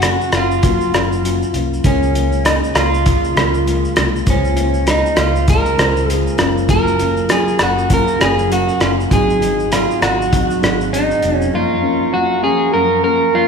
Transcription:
Already playing: fingered electric bass F#1, clean electric guitar F#4
0.02 nylon-string guitar F#3 A#3 C#4, cross-stick, closed hi-hat, shaker
0.21 shaker
0.32 fingered electric bass F#1, nylon-string guitar A#3 C#4 F4, cross-stick, closed hi-hat, shaker
0.37 clean electric guitar F4
0.51 shaker
0.62 nylon-string guitar F#3 A#3 C#4 F4, kick, closed hi-hat, shaker
0.81 shaker
0.92 fingered electric bass F#1, nylon-string guitar A#3 C#4 F4, cross-stick, closed hi-hat, shaker
1.12 shaker
1.23 nylon-string guitar F#3 A#3 C#4 F4, closed hi-hat, shaker
1.42 shaker
1.53 fingered electric bass C2, nylon-string guitar A#3 C#4 F4, closed hi-hat, shaker
1.74 shaker
1.83 fingered electric bass C#2, nylon-string guitar C#3 G#3 A#3 F4, reed electric piano G#3 C#4 F4 A#4, clean electric guitar C#4, kick, closed hi-hat, shaker
2.03 shaker
2.14 nylon-string guitar G#3 A#3 F4, closed hi-hat, shaker
2.32 shaker
2.45 nylon-string guitar C#3 G#3 A#3 F4, clean electric guitar D#4, cross-stick, closed hi-hat, shaker
2.64 shaker
2.75 fingered electric bass C#2, nylon-string guitar G#3 A#3 F4, clean electric guitar F4, cross-stick, closed hi-hat, shaker
2.94 shaker
3.04 nylon-string guitar C#3 G#3 A#3 F4, kick, closed hi-hat, shaker
3.24 shaker
3.35 fingered electric bass C#2, reed electric piano G#3 C#4 F4 A#4, nylon-string guitar G#3 A#3 F4, cross-stick, closed hi-hat, shaker
3.54 shaker
3.66 nylon-string guitar C#3 G#3 A#3 F4, closed hi-hat, shaker
3.85 shaker
3.96 fingered electric bass C2, nylon-string guitar G#3 A#3 F4, cross-stick, closed hi-hat, shaker
4.16 shaker
4.25 fingered electric bass C#2, nylon-string guitar C#3 G#3 A#3 F4, reed electric piano G#3 C#4 F4 C5, kick, closed hi-hat, shaker
4.30 clean electric guitar C#4
4.45 shaker
4.56 nylon-string guitar G#3 A#3 F4, closed hi-hat, shaker
4.74 shaker
4.86 nylon-string guitar C#3 G#3 A#3 F4, clean electric guitar D#4, cross-stick, closed hi-hat, shaker
5.06 shaker
5.16 fingered electric bass C#2, nylon-string guitar G#3 A#3 F4, clean electric guitar F4, cross-stick, closed hi-hat, shaker
5.36 shaker
5.47 nylon-string guitar C#3 G#3 A#3 F4, clean electric guitar A#4, kick, closed hi-hat, shaker
5.65 shaker
5.77 fingered electric bass C#2, reed electric piano G#3 C#4 F4 C5, nylon-string guitar A#3 F4, cross-stick, closed hi-hat, shaker
5.81 nylon-string guitar G#3
5.96 shaker
6.08 nylon-string guitar C#3 G#3 A#3, clean electric guitar G#4, closed hi-hat, shaker
6.12 nylon-string guitar F4
6.27 shaker
6.38 fingered electric bass F#1, reed electric piano F#3 C#4 F4 A#4, nylon-string guitar A#3 C#4 F4, cross-stick, closed hi-hat, shaker
6.58 shaker
6.68 nylon-string guitar F#3 A#3 C#4 F4, clean electric guitar A#4, kick, closed hi-hat, shaker
6.87 shaker
6.99 nylon-string guitar A#3 C#4 F4, closed hi-hat, shaker
7.17 shaker
7.29 nylon-string guitar F#3 A#3 C#4 F4, clean electric guitar G#4, cross-stick, closed hi-hat, shaker
7.48 shaker
7.59 fingered electric bass F#1, nylon-string guitar A#3 C#4, clean electric guitar F#4, cross-stick, closed hi-hat, shaker
7.78 shaker
7.90 nylon-string guitar F#3 A#3 C#4 F4, kick, closed hi-hat, shaker
7.94 clean electric guitar A#4
8.08 shaker
8.18 fingered electric bass F#1, reed electric piano F#3 C#4 A#4 F5, nylon-string guitar C#4 F4, cross-stick, closed hi-hat, shaker
8.22 nylon-string guitar A#3, clean electric guitar G#4
8.39 shaker
8.49 nylon-string guitar F#3 A#3 C#4, clean electric guitar F#4, closed hi-hat, shaker
8.69 shaker
8.80 fingered electric bass F#1, nylon-string guitar A#3 C#4 F4, clean electric guitar F4, cross-stick, closed hi-hat, shaker
9.00 shaker
9.10 fingered electric bass G#1, nylon-string guitar G#2 F#3 C4 D#4, reed electric piano F#3 C4 D#4 G#4, clean electric guitar G#4, kick, closed hi-hat, shaker
9.30 shaker
9.41 nylon-string guitar F#3 C4 D#4, closed hi-hat, shaker
9.60 shaker
9.71 nylon-string guitar G#2 F#3 C4 D#4, clean electric guitar F4, cross-stick, closed hi-hat, shaker
9.91 shaker
10.02 fingered electric bass G#1, nylon-string guitar F#3 C4 D#4, clean electric guitar F#4, cross-stick, closed hi-hat, shaker
10.22 shaker
10.32 nylon-string guitar G#2 F#3 C4 D#4, kick, closed hi-hat, shaker
10.50 shaker
10.61 fingered electric bass G#1, reed electric piano F#3 C4 D#4 G#4, nylon-string guitar C4 D#4, cross-stick, closed hi-hat, shaker
10.65 nylon-string guitar F#3
10.81 shaker
10.91 nylon-string guitar G#2 F#3 C4 D#4, clean electric guitar D#4, closed hi-hat, shaker
11.11 shaker
11.21 fingered electric bass F1, nylon-string guitar F#3 C4 D#4, closed hi-hat, shaker
11.36 clean electric guitar C#4
11.42 shaker
11.52 nylon-string guitar F#2 F3 A#3 C#4, clean electric guitar F4, pipe organ A#4 F5 A#5 C#6
11.82 nylon-string guitar F3 A#3 C#4
12.12 nylon-string guitar F#2 A#3 C#4, clean electric guitar F#4
12.43 nylon-string guitar F3 A#3 C#4, clean electric guitar G#4
12.73 nylon-string guitar F#2 F3 A#3 C#4, clean electric guitar A#4
13.04 nylon-string guitar F3 A#3 C#4, clean electric guitar A#4
13.33 nylon-string guitar F#2 F3 A#3 C#4, clean electric guitar F4

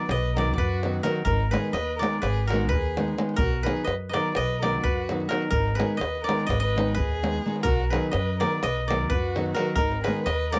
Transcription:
Already playing: koto B4 D5
0.09 upright bass B1, violin B4, koto D#5, davul high
0.23 davul high
0.36 nylon-string guitar D#3 F#3 B3 D#4, violin A#4, koto D5, davul high
0.47 davul high
0.52 violin A#4, koto D5
0.56 upright bass F#2, violin F#4, koto B4, davul low
0.83 nylon-string guitar D#3 F#3 B3 D#4, davul high
0.93 davul high
1.03 nylon-string guitar D#3 F#3 B3 D#4, violin F#4, koto A#4, davul high
1.16 davul high
1.25 upright bass G#1, violin D#4, koto A#4, davul low
1.40 davul high
1.51 nylon-string guitar D#3 G#3 B3 D#4, violin G#4, koto B4, davul high
1.64 davul high
1.73 upright bass D#2, violin B4, koto D#5, davul high
1.98 nylon-string guitar D#3 G#3, violin A#4, koto D5
2.02 nylon-string guitar B3 D#4, davul high
2.13 davul high
2.21 upright bass G#1, violin G#4, koto B4, davul high
2.36 davul high
2.47 violin F#4, koto A#4, davul high
2.52 nylon-string guitar D#3 G#3 B3 D#4
2.61 davul high
2.69 upright bass D#2, violin G#4, koto B4
2.73 davul low
2.97 nylon-string guitar D#3 G#3 B3 D#4, davul high
3.08 davul high
3.18 nylon-string guitar D#3 G#3 B3 D#4, davul high
3.29 davul high
3.35 upright bass B1, violin F#4, koto A#4, davul low
3.53 davul high
3.63 nylon-string guitar D#3 F#3 B3 D#4, violin G#4, koto B4, davul high
3.77 davul high
3.84 upright bass F#2, violin B4, koto D#5, davul high
4.09 violin B4, koto D5 D#5
4.14 nylon-string guitar D#3 F#3 B3 D#4, violin A#4, davul high
4.26 davul high
4.35 upright bass B1, violin B4, koto D#5, davul high
4.50 davul high
4.62 nylon-string guitar D#3 F#3 B3 D#4, violin A#4, koto D5, davul high
4.74 davul high
4.81 upright bass F#2, violin F#4, koto B4, davul low
5.09 nylon-string guitar D#3 F#3 B3 D#4, davul high
5.20 davul high
5.28 nylon-string guitar D#3 F#3 B3 D#4, violin F#4, koto A#4, davul high
5.42 davul high
5.48 upright bass G#1, violin D#4, koto A#4
5.53 davul low
5.68 davul high
5.75 nylon-string guitar D#3, violin G#4, koto B4
5.79 nylon-string guitar G#3 B3 D#4, davul high
5.90 davul high
5.97 upright bass D#2, violin B4, koto D#5
6.01 davul high
6.15 davul high
6.24 violin A#4, koto D5
6.28 nylon-string guitar D#3 G#3 B3 D#4, davul high
6.40 davul high
6.47 upright bass G#1, violin B4, koto D#5, davul high, davul low
6.60 violin B4, koto D#5
6.65 davul high
6.76 nylon-string guitar D#3 G#3 B3 D#4, davul high
6.89 davul high
6.95 upright bass D#2, violin G#4, koto B4
7.00 davul low
7.12 davul high
7.23 nylon-string guitar D#3 G#3 B3 D#4, davul high
7.34 davul high
7.46 nylon-string guitar D#3 G#3 B3 D#4
7.56 davul high
7.63 upright bass B1, violin F#4, koto A#4, davul low
7.80 davul high
7.90 nylon-string guitar D#3 F#3 D#4, violin G#4, koto B4, davul high
7.94 nylon-string guitar B3
8.04 davul high
8.11 upright bass F#2, violin B4, koto D#5, davul high
8.40 nylon-string guitar D#3 F#3 B3 D#4, violin A#4, koto D5, davul high
8.52 davul high
8.60 upright bass B1, violin B4, koto D#5, davul high
8.77 davul high
8.88 nylon-string guitar D#3 F#3 B3 D#4, violin A#4, koto D5, davul high
9.01 davul high
9.10 upright bass F#2, violin F#4, koto B4, davul low
9.36 nylon-string guitar D#3 F#3 B3 D#4, davul high
9.46 davul high
9.54 nylon-string guitar D#3 F#3, violin F#4, koto A#4, davul high
9.59 nylon-string guitar B3 D#4
9.67 davul high
9.75 upright bass G#1, violin D#4, koto A#4, davul low
9.92 davul high
10.04 nylon-string guitar D#3 G#3, violin G#4, koto B4, davul high
10.08 nylon-string guitar B3 D#4
10.16 davul high
10.24 upright bass D#2, violin B4, koto D#5, davul high
10.52 nylon-string guitar D#3 G#3 B3 D#4, violin A#4, koto D5, davul high

